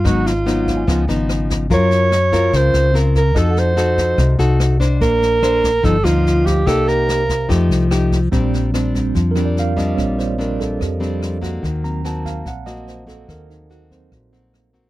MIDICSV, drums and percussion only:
0, 0, Header, 1, 2, 480
1, 0, Start_track
1, 0, Key_signature, -2, "major"
1, 0, Tempo, 413793
1, 57, Time_signature, 4, 2, 24, 8
1, 17283, End_track
2, 0, Start_track
2, 0, Title_t, "Drums"
2, 60, Note_on_c, 9, 37, 63
2, 60, Note_on_c, 9, 38, 24
2, 61, Note_on_c, 9, 36, 60
2, 176, Note_off_c, 9, 37, 0
2, 176, Note_off_c, 9, 38, 0
2, 177, Note_off_c, 9, 36, 0
2, 303, Note_on_c, 9, 38, 22
2, 419, Note_off_c, 9, 38, 0
2, 542, Note_on_c, 9, 38, 24
2, 658, Note_off_c, 9, 38, 0
2, 782, Note_on_c, 9, 36, 23
2, 784, Note_on_c, 9, 38, 23
2, 898, Note_off_c, 9, 36, 0
2, 900, Note_off_c, 9, 38, 0
2, 1020, Note_on_c, 9, 37, 54
2, 1020, Note_on_c, 9, 38, 22
2, 1021, Note_on_c, 9, 36, 55
2, 1136, Note_off_c, 9, 37, 0
2, 1136, Note_off_c, 9, 38, 0
2, 1137, Note_off_c, 9, 36, 0
2, 1262, Note_on_c, 9, 38, 24
2, 1378, Note_off_c, 9, 38, 0
2, 1498, Note_on_c, 9, 37, 57
2, 1498, Note_on_c, 9, 38, 23
2, 1614, Note_off_c, 9, 37, 0
2, 1614, Note_off_c, 9, 38, 0
2, 1740, Note_on_c, 9, 36, 23
2, 1740, Note_on_c, 9, 38, 24
2, 1856, Note_off_c, 9, 36, 0
2, 1856, Note_off_c, 9, 38, 0
2, 1973, Note_on_c, 9, 38, 25
2, 1979, Note_on_c, 9, 36, 59
2, 2089, Note_off_c, 9, 38, 0
2, 2095, Note_off_c, 9, 36, 0
2, 2212, Note_on_c, 9, 38, 23
2, 2328, Note_off_c, 9, 38, 0
2, 2457, Note_on_c, 9, 37, 58
2, 2457, Note_on_c, 9, 38, 23
2, 2573, Note_off_c, 9, 37, 0
2, 2573, Note_off_c, 9, 38, 0
2, 2697, Note_on_c, 9, 38, 24
2, 2698, Note_on_c, 9, 36, 24
2, 2813, Note_off_c, 9, 38, 0
2, 2814, Note_off_c, 9, 36, 0
2, 2934, Note_on_c, 9, 38, 23
2, 2939, Note_on_c, 9, 36, 53
2, 3050, Note_off_c, 9, 38, 0
2, 3055, Note_off_c, 9, 36, 0
2, 3173, Note_on_c, 9, 37, 57
2, 3173, Note_on_c, 9, 38, 24
2, 3289, Note_off_c, 9, 37, 0
2, 3289, Note_off_c, 9, 38, 0
2, 3422, Note_on_c, 9, 38, 25
2, 3538, Note_off_c, 9, 38, 0
2, 3656, Note_on_c, 9, 36, 23
2, 3657, Note_on_c, 9, 38, 23
2, 3772, Note_off_c, 9, 36, 0
2, 3773, Note_off_c, 9, 38, 0
2, 3893, Note_on_c, 9, 37, 61
2, 3893, Note_on_c, 9, 38, 23
2, 3894, Note_on_c, 9, 36, 63
2, 4009, Note_off_c, 9, 37, 0
2, 4009, Note_off_c, 9, 38, 0
2, 4010, Note_off_c, 9, 36, 0
2, 4133, Note_on_c, 9, 38, 22
2, 4249, Note_off_c, 9, 38, 0
2, 4371, Note_on_c, 9, 38, 25
2, 4487, Note_off_c, 9, 38, 0
2, 4612, Note_on_c, 9, 36, 23
2, 4613, Note_on_c, 9, 38, 23
2, 4728, Note_off_c, 9, 36, 0
2, 4729, Note_off_c, 9, 38, 0
2, 4848, Note_on_c, 9, 37, 55
2, 4848, Note_on_c, 9, 38, 23
2, 4851, Note_on_c, 9, 36, 56
2, 4964, Note_off_c, 9, 37, 0
2, 4964, Note_off_c, 9, 38, 0
2, 4967, Note_off_c, 9, 36, 0
2, 5090, Note_on_c, 9, 38, 23
2, 5206, Note_off_c, 9, 38, 0
2, 5332, Note_on_c, 9, 37, 58
2, 5332, Note_on_c, 9, 38, 26
2, 5448, Note_off_c, 9, 37, 0
2, 5448, Note_off_c, 9, 38, 0
2, 5574, Note_on_c, 9, 36, 22
2, 5577, Note_on_c, 9, 38, 24
2, 5690, Note_off_c, 9, 36, 0
2, 5693, Note_off_c, 9, 38, 0
2, 5813, Note_on_c, 9, 38, 24
2, 5814, Note_on_c, 9, 36, 59
2, 5929, Note_off_c, 9, 38, 0
2, 5930, Note_off_c, 9, 36, 0
2, 6057, Note_on_c, 9, 38, 23
2, 6173, Note_off_c, 9, 38, 0
2, 6295, Note_on_c, 9, 37, 63
2, 6295, Note_on_c, 9, 38, 24
2, 6411, Note_off_c, 9, 37, 0
2, 6411, Note_off_c, 9, 38, 0
2, 6535, Note_on_c, 9, 36, 23
2, 6539, Note_on_c, 9, 38, 23
2, 6651, Note_off_c, 9, 36, 0
2, 6655, Note_off_c, 9, 38, 0
2, 6774, Note_on_c, 9, 38, 22
2, 6775, Note_on_c, 9, 36, 57
2, 6890, Note_off_c, 9, 38, 0
2, 6891, Note_off_c, 9, 36, 0
2, 7018, Note_on_c, 9, 37, 60
2, 7018, Note_on_c, 9, 38, 24
2, 7134, Note_off_c, 9, 37, 0
2, 7134, Note_off_c, 9, 38, 0
2, 7264, Note_on_c, 9, 38, 24
2, 7380, Note_off_c, 9, 38, 0
2, 7496, Note_on_c, 9, 36, 23
2, 7499, Note_on_c, 9, 38, 24
2, 7612, Note_off_c, 9, 36, 0
2, 7615, Note_off_c, 9, 38, 0
2, 7736, Note_on_c, 9, 36, 60
2, 7738, Note_on_c, 9, 37, 60
2, 7738, Note_on_c, 9, 38, 23
2, 7852, Note_off_c, 9, 36, 0
2, 7854, Note_off_c, 9, 37, 0
2, 7854, Note_off_c, 9, 38, 0
2, 7980, Note_on_c, 9, 38, 24
2, 8096, Note_off_c, 9, 38, 0
2, 8220, Note_on_c, 9, 38, 24
2, 8336, Note_off_c, 9, 38, 0
2, 8456, Note_on_c, 9, 36, 24
2, 8458, Note_on_c, 9, 38, 24
2, 8572, Note_off_c, 9, 36, 0
2, 8574, Note_off_c, 9, 38, 0
2, 8697, Note_on_c, 9, 36, 54
2, 8700, Note_on_c, 9, 37, 53
2, 8700, Note_on_c, 9, 38, 23
2, 8813, Note_off_c, 9, 36, 0
2, 8816, Note_off_c, 9, 37, 0
2, 8816, Note_off_c, 9, 38, 0
2, 8940, Note_on_c, 9, 38, 24
2, 9056, Note_off_c, 9, 38, 0
2, 9174, Note_on_c, 9, 37, 62
2, 9174, Note_on_c, 9, 38, 25
2, 9290, Note_off_c, 9, 37, 0
2, 9290, Note_off_c, 9, 38, 0
2, 9418, Note_on_c, 9, 38, 22
2, 9419, Note_on_c, 9, 36, 22
2, 9534, Note_off_c, 9, 38, 0
2, 9535, Note_off_c, 9, 36, 0
2, 9655, Note_on_c, 9, 38, 25
2, 9659, Note_on_c, 9, 36, 59
2, 9771, Note_off_c, 9, 38, 0
2, 9775, Note_off_c, 9, 36, 0
2, 9900, Note_on_c, 9, 38, 24
2, 10016, Note_off_c, 9, 38, 0
2, 10137, Note_on_c, 9, 37, 58
2, 10137, Note_on_c, 9, 38, 23
2, 10253, Note_off_c, 9, 37, 0
2, 10253, Note_off_c, 9, 38, 0
2, 10379, Note_on_c, 9, 38, 23
2, 10380, Note_on_c, 9, 36, 23
2, 10495, Note_off_c, 9, 38, 0
2, 10496, Note_off_c, 9, 36, 0
2, 10612, Note_on_c, 9, 38, 21
2, 10619, Note_on_c, 9, 36, 54
2, 10728, Note_off_c, 9, 38, 0
2, 10735, Note_off_c, 9, 36, 0
2, 10851, Note_on_c, 9, 37, 60
2, 10851, Note_on_c, 9, 38, 23
2, 10967, Note_off_c, 9, 37, 0
2, 10967, Note_off_c, 9, 38, 0
2, 11098, Note_on_c, 9, 38, 25
2, 11214, Note_off_c, 9, 38, 0
2, 11340, Note_on_c, 9, 36, 22
2, 11344, Note_on_c, 9, 38, 22
2, 11456, Note_off_c, 9, 36, 0
2, 11460, Note_off_c, 9, 38, 0
2, 11578, Note_on_c, 9, 37, 60
2, 11578, Note_on_c, 9, 38, 23
2, 11579, Note_on_c, 9, 36, 58
2, 11694, Note_off_c, 9, 37, 0
2, 11694, Note_off_c, 9, 38, 0
2, 11695, Note_off_c, 9, 36, 0
2, 11819, Note_on_c, 9, 38, 22
2, 11935, Note_off_c, 9, 38, 0
2, 12058, Note_on_c, 9, 38, 22
2, 12174, Note_off_c, 9, 38, 0
2, 12298, Note_on_c, 9, 36, 22
2, 12301, Note_on_c, 9, 38, 23
2, 12414, Note_off_c, 9, 36, 0
2, 12417, Note_off_c, 9, 38, 0
2, 12536, Note_on_c, 9, 36, 53
2, 12537, Note_on_c, 9, 37, 53
2, 12537, Note_on_c, 9, 38, 23
2, 12652, Note_off_c, 9, 36, 0
2, 12653, Note_off_c, 9, 37, 0
2, 12653, Note_off_c, 9, 38, 0
2, 12782, Note_on_c, 9, 38, 23
2, 12898, Note_off_c, 9, 38, 0
2, 13018, Note_on_c, 9, 37, 58
2, 13018, Note_on_c, 9, 38, 24
2, 13134, Note_off_c, 9, 37, 0
2, 13134, Note_off_c, 9, 38, 0
2, 13255, Note_on_c, 9, 36, 21
2, 13258, Note_on_c, 9, 38, 22
2, 13371, Note_off_c, 9, 36, 0
2, 13374, Note_off_c, 9, 38, 0
2, 13495, Note_on_c, 9, 36, 58
2, 13500, Note_on_c, 9, 38, 23
2, 13611, Note_off_c, 9, 36, 0
2, 13616, Note_off_c, 9, 38, 0
2, 13737, Note_on_c, 9, 38, 22
2, 13853, Note_off_c, 9, 38, 0
2, 13976, Note_on_c, 9, 37, 58
2, 13976, Note_on_c, 9, 38, 23
2, 14092, Note_off_c, 9, 37, 0
2, 14092, Note_off_c, 9, 38, 0
2, 14213, Note_on_c, 9, 36, 23
2, 14218, Note_on_c, 9, 38, 22
2, 14329, Note_off_c, 9, 36, 0
2, 14334, Note_off_c, 9, 38, 0
2, 14449, Note_on_c, 9, 38, 22
2, 14451, Note_on_c, 9, 36, 53
2, 14565, Note_off_c, 9, 38, 0
2, 14567, Note_off_c, 9, 36, 0
2, 14693, Note_on_c, 9, 37, 58
2, 14693, Note_on_c, 9, 38, 22
2, 14809, Note_off_c, 9, 37, 0
2, 14809, Note_off_c, 9, 38, 0
2, 14931, Note_on_c, 9, 38, 24
2, 15047, Note_off_c, 9, 38, 0
2, 15172, Note_on_c, 9, 36, 21
2, 15174, Note_on_c, 9, 38, 20
2, 15288, Note_off_c, 9, 36, 0
2, 15290, Note_off_c, 9, 38, 0
2, 15413, Note_on_c, 9, 36, 56
2, 15413, Note_on_c, 9, 37, 55
2, 15413, Note_on_c, 9, 38, 22
2, 15529, Note_off_c, 9, 36, 0
2, 15529, Note_off_c, 9, 37, 0
2, 15529, Note_off_c, 9, 38, 0
2, 15662, Note_on_c, 9, 38, 22
2, 15778, Note_off_c, 9, 38, 0
2, 15898, Note_on_c, 9, 38, 23
2, 16014, Note_off_c, 9, 38, 0
2, 16135, Note_on_c, 9, 36, 21
2, 16138, Note_on_c, 9, 38, 21
2, 16251, Note_off_c, 9, 36, 0
2, 16254, Note_off_c, 9, 38, 0
2, 16376, Note_on_c, 9, 37, 52
2, 16376, Note_on_c, 9, 38, 20
2, 16377, Note_on_c, 9, 36, 51
2, 16492, Note_off_c, 9, 37, 0
2, 16492, Note_off_c, 9, 38, 0
2, 16493, Note_off_c, 9, 36, 0
2, 16621, Note_on_c, 9, 38, 23
2, 16737, Note_off_c, 9, 38, 0
2, 16862, Note_on_c, 9, 37, 54
2, 16862, Note_on_c, 9, 38, 23
2, 16978, Note_off_c, 9, 37, 0
2, 16978, Note_off_c, 9, 38, 0
2, 17100, Note_on_c, 9, 36, 20
2, 17104, Note_on_c, 9, 38, 21
2, 17216, Note_off_c, 9, 36, 0
2, 17220, Note_off_c, 9, 38, 0
2, 17283, End_track
0, 0, End_of_file